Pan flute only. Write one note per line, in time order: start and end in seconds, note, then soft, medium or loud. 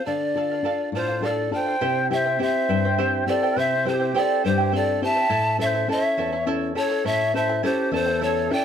0.06 0.90 D5 medium
0.95 1.26 C5 medium
1.25 1.53 D5 medium
1.54 2.07 G5 medium
2.13 2.39 E5 medium
2.42 2.99 E5 medium
3.29 3.60 D5 medium
3.59 3.89 E5 medium
3.88 4.18 C5 medium
4.17 4.45 D5 medium
4.45 4.71 C5 medium
4.76 5.01 D5 medium
5.04 5.57 A5 loud
5.61 5.87 E5 medium
5.92 6.03 D#5 medium
6.03 6.47 E5 medium
6.78 7.08 C#5 medium
7.07 7.35 E5 medium
7.37 7.62 E5 medium
7.65 7.91 C5 medium
7.95 8.25 C5 loud
8.23 8.54 C#5 medium
8.52 8.65 G5 loud